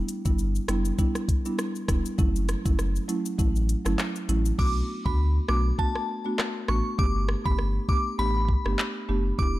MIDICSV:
0, 0, Header, 1, 5, 480
1, 0, Start_track
1, 0, Key_signature, 2, "minor"
1, 0, Tempo, 600000
1, 1750, Time_signature, 4, 2, 24, 8
1, 7675, End_track
2, 0, Start_track
2, 0, Title_t, "Synth bell"
2, 0, Program_c, 0, 98
2, 3671, Note_on_c, 0, 86, 104
2, 3754, Note_off_c, 0, 86, 0
2, 4045, Note_on_c, 0, 83, 71
2, 4110, Note_off_c, 0, 83, 0
2, 4391, Note_on_c, 0, 86, 78
2, 4474, Note_off_c, 0, 86, 0
2, 4631, Note_on_c, 0, 81, 102
2, 4982, Note_off_c, 0, 81, 0
2, 5351, Note_on_c, 0, 85, 78
2, 5434, Note_off_c, 0, 85, 0
2, 5590, Note_on_c, 0, 86, 100
2, 5673, Note_off_c, 0, 86, 0
2, 5964, Note_on_c, 0, 83, 83
2, 6030, Note_off_c, 0, 83, 0
2, 6311, Note_on_c, 0, 86, 91
2, 6394, Note_off_c, 0, 86, 0
2, 6551, Note_on_c, 0, 83, 106
2, 6902, Note_off_c, 0, 83, 0
2, 7510, Note_on_c, 0, 86, 112
2, 7593, Note_off_c, 0, 86, 0
2, 7675, End_track
3, 0, Start_track
3, 0, Title_t, "Marimba"
3, 0, Program_c, 1, 12
3, 0, Note_on_c, 1, 55, 89
3, 0, Note_on_c, 1, 59, 83
3, 0, Note_on_c, 1, 62, 84
3, 0, Note_on_c, 1, 64, 106
3, 171, Note_off_c, 1, 55, 0
3, 172, Note_off_c, 1, 59, 0
3, 173, Note_off_c, 1, 62, 0
3, 174, Note_off_c, 1, 64, 0
3, 202, Note_on_c, 1, 55, 77
3, 203, Note_on_c, 1, 59, 69
3, 205, Note_on_c, 1, 62, 69
3, 206, Note_on_c, 1, 64, 81
3, 523, Note_off_c, 1, 55, 0
3, 524, Note_off_c, 1, 59, 0
3, 525, Note_off_c, 1, 62, 0
3, 525, Note_off_c, 1, 64, 0
3, 548, Note_on_c, 1, 55, 77
3, 551, Note_on_c, 1, 59, 71
3, 552, Note_on_c, 1, 62, 68
3, 554, Note_on_c, 1, 64, 82
3, 772, Note_off_c, 1, 55, 0
3, 773, Note_off_c, 1, 59, 0
3, 774, Note_off_c, 1, 62, 0
3, 775, Note_off_c, 1, 64, 0
3, 788, Note_on_c, 1, 55, 89
3, 789, Note_on_c, 1, 59, 81
3, 791, Note_on_c, 1, 62, 76
3, 793, Note_on_c, 1, 64, 101
3, 1131, Note_off_c, 1, 55, 0
3, 1132, Note_off_c, 1, 59, 0
3, 1132, Note_off_c, 1, 62, 0
3, 1133, Note_off_c, 1, 64, 0
3, 1162, Note_on_c, 1, 55, 77
3, 1164, Note_on_c, 1, 59, 70
3, 1166, Note_on_c, 1, 62, 71
3, 1167, Note_on_c, 1, 64, 83
3, 1295, Note_off_c, 1, 55, 0
3, 1296, Note_off_c, 1, 59, 0
3, 1297, Note_off_c, 1, 62, 0
3, 1298, Note_off_c, 1, 64, 0
3, 1508, Note_on_c, 1, 55, 78
3, 1509, Note_on_c, 1, 59, 69
3, 1511, Note_on_c, 1, 62, 68
3, 1513, Note_on_c, 1, 64, 82
3, 1664, Note_off_c, 1, 55, 0
3, 1665, Note_off_c, 1, 59, 0
3, 1666, Note_off_c, 1, 62, 0
3, 1666, Note_off_c, 1, 64, 0
3, 1746, Note_on_c, 1, 54, 98
3, 1748, Note_on_c, 1, 57, 86
3, 1749, Note_on_c, 1, 61, 86
3, 1751, Note_on_c, 1, 64, 105
3, 2090, Note_off_c, 1, 54, 0
3, 2091, Note_off_c, 1, 57, 0
3, 2092, Note_off_c, 1, 61, 0
3, 2092, Note_off_c, 1, 64, 0
3, 2122, Note_on_c, 1, 54, 76
3, 2123, Note_on_c, 1, 57, 69
3, 2125, Note_on_c, 1, 61, 70
3, 2126, Note_on_c, 1, 64, 83
3, 2443, Note_off_c, 1, 54, 0
3, 2444, Note_off_c, 1, 57, 0
3, 2444, Note_off_c, 1, 61, 0
3, 2445, Note_off_c, 1, 64, 0
3, 2467, Note_on_c, 1, 54, 76
3, 2469, Note_on_c, 1, 57, 68
3, 2470, Note_on_c, 1, 61, 73
3, 2472, Note_on_c, 1, 64, 85
3, 2691, Note_off_c, 1, 54, 0
3, 2692, Note_off_c, 1, 57, 0
3, 2693, Note_off_c, 1, 61, 0
3, 2694, Note_off_c, 1, 64, 0
3, 2708, Note_on_c, 1, 54, 85
3, 2709, Note_on_c, 1, 57, 84
3, 2710, Note_on_c, 1, 61, 81
3, 2712, Note_on_c, 1, 64, 96
3, 3051, Note_off_c, 1, 54, 0
3, 3051, Note_off_c, 1, 57, 0
3, 3052, Note_off_c, 1, 61, 0
3, 3053, Note_off_c, 1, 64, 0
3, 3080, Note_on_c, 1, 54, 78
3, 3081, Note_on_c, 1, 57, 74
3, 3083, Note_on_c, 1, 61, 72
3, 3085, Note_on_c, 1, 64, 87
3, 3214, Note_off_c, 1, 54, 0
3, 3215, Note_off_c, 1, 57, 0
3, 3216, Note_off_c, 1, 61, 0
3, 3217, Note_off_c, 1, 64, 0
3, 3428, Note_on_c, 1, 54, 75
3, 3430, Note_on_c, 1, 57, 67
3, 3431, Note_on_c, 1, 61, 71
3, 3433, Note_on_c, 1, 64, 85
3, 3584, Note_off_c, 1, 54, 0
3, 3585, Note_off_c, 1, 57, 0
3, 3586, Note_off_c, 1, 61, 0
3, 3587, Note_off_c, 1, 64, 0
3, 3668, Note_on_c, 1, 57, 94
3, 3670, Note_on_c, 1, 59, 90
3, 3671, Note_on_c, 1, 62, 86
3, 3673, Note_on_c, 1, 66, 102
3, 4011, Note_off_c, 1, 57, 0
3, 4012, Note_off_c, 1, 59, 0
3, 4012, Note_off_c, 1, 62, 0
3, 4013, Note_off_c, 1, 66, 0
3, 4042, Note_on_c, 1, 57, 73
3, 4043, Note_on_c, 1, 59, 67
3, 4045, Note_on_c, 1, 62, 70
3, 4047, Note_on_c, 1, 66, 82
3, 4363, Note_off_c, 1, 57, 0
3, 4364, Note_off_c, 1, 59, 0
3, 4365, Note_off_c, 1, 62, 0
3, 4366, Note_off_c, 1, 66, 0
3, 4389, Note_on_c, 1, 57, 77
3, 4391, Note_on_c, 1, 59, 67
3, 4392, Note_on_c, 1, 62, 68
3, 4393, Note_on_c, 1, 66, 83
3, 4612, Note_off_c, 1, 57, 0
3, 4613, Note_off_c, 1, 59, 0
3, 4614, Note_off_c, 1, 62, 0
3, 4614, Note_off_c, 1, 66, 0
3, 4627, Note_on_c, 1, 57, 89
3, 4629, Note_on_c, 1, 59, 83
3, 4631, Note_on_c, 1, 62, 82
3, 4632, Note_on_c, 1, 66, 96
3, 4970, Note_off_c, 1, 57, 0
3, 4971, Note_off_c, 1, 59, 0
3, 4972, Note_off_c, 1, 62, 0
3, 4973, Note_off_c, 1, 66, 0
3, 5002, Note_on_c, 1, 57, 78
3, 5004, Note_on_c, 1, 59, 69
3, 5005, Note_on_c, 1, 62, 68
3, 5007, Note_on_c, 1, 66, 88
3, 5135, Note_off_c, 1, 57, 0
3, 5136, Note_off_c, 1, 59, 0
3, 5137, Note_off_c, 1, 62, 0
3, 5138, Note_off_c, 1, 66, 0
3, 5346, Note_on_c, 1, 57, 74
3, 5348, Note_on_c, 1, 59, 70
3, 5350, Note_on_c, 1, 62, 71
3, 5352, Note_on_c, 1, 66, 83
3, 5503, Note_off_c, 1, 57, 0
3, 5504, Note_off_c, 1, 59, 0
3, 5505, Note_off_c, 1, 62, 0
3, 5506, Note_off_c, 1, 66, 0
3, 5586, Note_on_c, 1, 57, 94
3, 5589, Note_on_c, 1, 59, 83
3, 5591, Note_on_c, 1, 62, 86
3, 5592, Note_on_c, 1, 67, 106
3, 5930, Note_off_c, 1, 57, 0
3, 5932, Note_off_c, 1, 59, 0
3, 5932, Note_off_c, 1, 62, 0
3, 5933, Note_off_c, 1, 67, 0
3, 5962, Note_on_c, 1, 57, 77
3, 5964, Note_on_c, 1, 59, 66
3, 5965, Note_on_c, 1, 62, 72
3, 5967, Note_on_c, 1, 67, 83
3, 6283, Note_off_c, 1, 57, 0
3, 6284, Note_off_c, 1, 59, 0
3, 6285, Note_off_c, 1, 62, 0
3, 6286, Note_off_c, 1, 67, 0
3, 6308, Note_on_c, 1, 57, 75
3, 6310, Note_on_c, 1, 59, 70
3, 6311, Note_on_c, 1, 62, 71
3, 6313, Note_on_c, 1, 67, 81
3, 6532, Note_off_c, 1, 57, 0
3, 6533, Note_off_c, 1, 59, 0
3, 6534, Note_off_c, 1, 62, 0
3, 6534, Note_off_c, 1, 67, 0
3, 6548, Note_on_c, 1, 57, 84
3, 6550, Note_on_c, 1, 59, 80
3, 6551, Note_on_c, 1, 62, 84
3, 6553, Note_on_c, 1, 67, 99
3, 6891, Note_off_c, 1, 57, 0
3, 6892, Note_off_c, 1, 59, 0
3, 6892, Note_off_c, 1, 62, 0
3, 6893, Note_off_c, 1, 67, 0
3, 6922, Note_on_c, 1, 57, 76
3, 6924, Note_on_c, 1, 59, 71
3, 6926, Note_on_c, 1, 62, 73
3, 6927, Note_on_c, 1, 67, 87
3, 7055, Note_off_c, 1, 57, 0
3, 7056, Note_off_c, 1, 59, 0
3, 7057, Note_off_c, 1, 62, 0
3, 7058, Note_off_c, 1, 67, 0
3, 7269, Note_on_c, 1, 57, 77
3, 7270, Note_on_c, 1, 59, 68
3, 7272, Note_on_c, 1, 62, 72
3, 7274, Note_on_c, 1, 67, 81
3, 7425, Note_off_c, 1, 57, 0
3, 7425, Note_off_c, 1, 59, 0
3, 7426, Note_off_c, 1, 62, 0
3, 7427, Note_off_c, 1, 67, 0
3, 7508, Note_on_c, 1, 59, 94
3, 7510, Note_on_c, 1, 62, 84
3, 7511, Note_on_c, 1, 64, 84
3, 7513, Note_on_c, 1, 67, 101
3, 7675, Note_off_c, 1, 59, 0
3, 7675, Note_off_c, 1, 62, 0
3, 7675, Note_off_c, 1, 64, 0
3, 7675, Note_off_c, 1, 67, 0
3, 7675, End_track
4, 0, Start_track
4, 0, Title_t, "Sub bass"
4, 0, Program_c, 2, 38
4, 204, Note_on_c, 2, 31, 89
4, 473, Note_off_c, 2, 31, 0
4, 547, Note_on_c, 2, 30, 95
4, 735, Note_off_c, 2, 30, 0
4, 1509, Note_on_c, 2, 28, 95
4, 1614, Note_off_c, 2, 28, 0
4, 1749, Note_on_c, 2, 30, 109
4, 2040, Note_off_c, 2, 30, 0
4, 2125, Note_on_c, 2, 30, 100
4, 2393, Note_off_c, 2, 30, 0
4, 2711, Note_on_c, 2, 33, 103
4, 3002, Note_off_c, 2, 33, 0
4, 3082, Note_on_c, 2, 31, 90
4, 3165, Note_off_c, 2, 31, 0
4, 3428, Note_on_c, 2, 33, 92
4, 3616, Note_off_c, 2, 33, 0
4, 3670, Note_on_c, 2, 35, 101
4, 3857, Note_off_c, 2, 35, 0
4, 4045, Note_on_c, 2, 38, 90
4, 4314, Note_off_c, 2, 38, 0
4, 4389, Note_on_c, 2, 35, 96
4, 4576, Note_off_c, 2, 35, 0
4, 5348, Note_on_c, 2, 33, 98
4, 5453, Note_off_c, 2, 33, 0
4, 5589, Note_on_c, 2, 31, 109
4, 5881, Note_off_c, 2, 31, 0
4, 5966, Note_on_c, 2, 31, 83
4, 6234, Note_off_c, 2, 31, 0
4, 6549, Note_on_c, 2, 33, 96
4, 6840, Note_off_c, 2, 33, 0
4, 6924, Note_on_c, 2, 31, 83
4, 7006, Note_off_c, 2, 31, 0
4, 7270, Note_on_c, 2, 30, 99
4, 7457, Note_off_c, 2, 30, 0
4, 7509, Note_on_c, 2, 28, 107
4, 7675, Note_off_c, 2, 28, 0
4, 7675, End_track
5, 0, Start_track
5, 0, Title_t, "Drums"
5, 68, Note_on_c, 9, 42, 73
5, 68, Note_on_c, 9, 82, 54
5, 148, Note_off_c, 9, 42, 0
5, 148, Note_off_c, 9, 82, 0
5, 202, Note_on_c, 9, 82, 69
5, 205, Note_on_c, 9, 36, 88
5, 282, Note_off_c, 9, 82, 0
5, 285, Note_off_c, 9, 36, 0
5, 309, Note_on_c, 9, 82, 68
5, 389, Note_off_c, 9, 82, 0
5, 443, Note_on_c, 9, 82, 60
5, 523, Note_off_c, 9, 82, 0
5, 547, Note_on_c, 9, 37, 105
5, 548, Note_on_c, 9, 42, 74
5, 548, Note_on_c, 9, 82, 53
5, 627, Note_off_c, 9, 37, 0
5, 628, Note_off_c, 9, 42, 0
5, 628, Note_off_c, 9, 82, 0
5, 680, Note_on_c, 9, 82, 84
5, 760, Note_off_c, 9, 82, 0
5, 788, Note_on_c, 9, 82, 70
5, 789, Note_on_c, 9, 36, 92
5, 868, Note_off_c, 9, 82, 0
5, 869, Note_off_c, 9, 36, 0
5, 922, Note_on_c, 9, 37, 85
5, 924, Note_on_c, 9, 82, 54
5, 1002, Note_off_c, 9, 37, 0
5, 1004, Note_off_c, 9, 82, 0
5, 1028, Note_on_c, 9, 36, 87
5, 1030, Note_on_c, 9, 42, 69
5, 1030, Note_on_c, 9, 82, 49
5, 1108, Note_off_c, 9, 36, 0
5, 1110, Note_off_c, 9, 42, 0
5, 1110, Note_off_c, 9, 82, 0
5, 1164, Note_on_c, 9, 82, 68
5, 1244, Note_off_c, 9, 82, 0
5, 1269, Note_on_c, 9, 37, 99
5, 1269, Note_on_c, 9, 82, 72
5, 1349, Note_off_c, 9, 37, 0
5, 1349, Note_off_c, 9, 82, 0
5, 1404, Note_on_c, 9, 82, 50
5, 1484, Note_off_c, 9, 82, 0
5, 1507, Note_on_c, 9, 37, 96
5, 1509, Note_on_c, 9, 36, 90
5, 1511, Note_on_c, 9, 42, 81
5, 1511, Note_on_c, 9, 82, 55
5, 1587, Note_off_c, 9, 37, 0
5, 1589, Note_off_c, 9, 36, 0
5, 1591, Note_off_c, 9, 42, 0
5, 1591, Note_off_c, 9, 82, 0
5, 1644, Note_on_c, 9, 82, 72
5, 1724, Note_off_c, 9, 82, 0
5, 1749, Note_on_c, 9, 36, 120
5, 1749, Note_on_c, 9, 82, 71
5, 1829, Note_off_c, 9, 36, 0
5, 1829, Note_off_c, 9, 82, 0
5, 1886, Note_on_c, 9, 82, 62
5, 1966, Note_off_c, 9, 82, 0
5, 1989, Note_on_c, 9, 42, 74
5, 1989, Note_on_c, 9, 82, 53
5, 1990, Note_on_c, 9, 37, 96
5, 2069, Note_off_c, 9, 42, 0
5, 2069, Note_off_c, 9, 82, 0
5, 2070, Note_off_c, 9, 37, 0
5, 2124, Note_on_c, 9, 82, 70
5, 2125, Note_on_c, 9, 36, 95
5, 2204, Note_off_c, 9, 82, 0
5, 2205, Note_off_c, 9, 36, 0
5, 2230, Note_on_c, 9, 37, 88
5, 2231, Note_on_c, 9, 82, 70
5, 2310, Note_off_c, 9, 37, 0
5, 2311, Note_off_c, 9, 82, 0
5, 2366, Note_on_c, 9, 82, 59
5, 2446, Note_off_c, 9, 82, 0
5, 2472, Note_on_c, 9, 42, 72
5, 2472, Note_on_c, 9, 82, 55
5, 2552, Note_off_c, 9, 42, 0
5, 2552, Note_off_c, 9, 82, 0
5, 2605, Note_on_c, 9, 82, 85
5, 2685, Note_off_c, 9, 82, 0
5, 2710, Note_on_c, 9, 36, 89
5, 2711, Note_on_c, 9, 82, 69
5, 2790, Note_off_c, 9, 36, 0
5, 2791, Note_off_c, 9, 82, 0
5, 2846, Note_on_c, 9, 82, 56
5, 2926, Note_off_c, 9, 82, 0
5, 2953, Note_on_c, 9, 42, 69
5, 2953, Note_on_c, 9, 82, 50
5, 3033, Note_off_c, 9, 42, 0
5, 3033, Note_off_c, 9, 82, 0
5, 3086, Note_on_c, 9, 82, 71
5, 3088, Note_on_c, 9, 37, 87
5, 3166, Note_off_c, 9, 82, 0
5, 3168, Note_off_c, 9, 37, 0
5, 3191, Note_on_c, 9, 39, 95
5, 3191, Note_on_c, 9, 82, 73
5, 3271, Note_off_c, 9, 39, 0
5, 3271, Note_off_c, 9, 82, 0
5, 3326, Note_on_c, 9, 82, 51
5, 3406, Note_off_c, 9, 82, 0
5, 3432, Note_on_c, 9, 42, 80
5, 3432, Note_on_c, 9, 82, 56
5, 3512, Note_off_c, 9, 42, 0
5, 3512, Note_off_c, 9, 82, 0
5, 3565, Note_on_c, 9, 82, 72
5, 3645, Note_off_c, 9, 82, 0
5, 3670, Note_on_c, 9, 36, 115
5, 3671, Note_on_c, 9, 49, 99
5, 3750, Note_off_c, 9, 36, 0
5, 3751, Note_off_c, 9, 49, 0
5, 4045, Note_on_c, 9, 36, 90
5, 4125, Note_off_c, 9, 36, 0
5, 4388, Note_on_c, 9, 37, 105
5, 4468, Note_off_c, 9, 37, 0
5, 4630, Note_on_c, 9, 36, 93
5, 4710, Note_off_c, 9, 36, 0
5, 4764, Note_on_c, 9, 37, 87
5, 4844, Note_off_c, 9, 37, 0
5, 5111, Note_on_c, 9, 37, 98
5, 5111, Note_on_c, 9, 39, 104
5, 5191, Note_off_c, 9, 37, 0
5, 5191, Note_off_c, 9, 39, 0
5, 5347, Note_on_c, 9, 37, 98
5, 5427, Note_off_c, 9, 37, 0
5, 5590, Note_on_c, 9, 36, 112
5, 5670, Note_off_c, 9, 36, 0
5, 5828, Note_on_c, 9, 37, 101
5, 5908, Note_off_c, 9, 37, 0
5, 5965, Note_on_c, 9, 36, 92
5, 6045, Note_off_c, 9, 36, 0
5, 6069, Note_on_c, 9, 37, 84
5, 6149, Note_off_c, 9, 37, 0
5, 6309, Note_on_c, 9, 36, 102
5, 6389, Note_off_c, 9, 36, 0
5, 6788, Note_on_c, 9, 36, 88
5, 6868, Note_off_c, 9, 36, 0
5, 6926, Note_on_c, 9, 37, 86
5, 7006, Note_off_c, 9, 37, 0
5, 7029, Note_on_c, 9, 39, 98
5, 7109, Note_off_c, 9, 39, 0
5, 7509, Note_on_c, 9, 36, 115
5, 7589, Note_off_c, 9, 36, 0
5, 7675, End_track
0, 0, End_of_file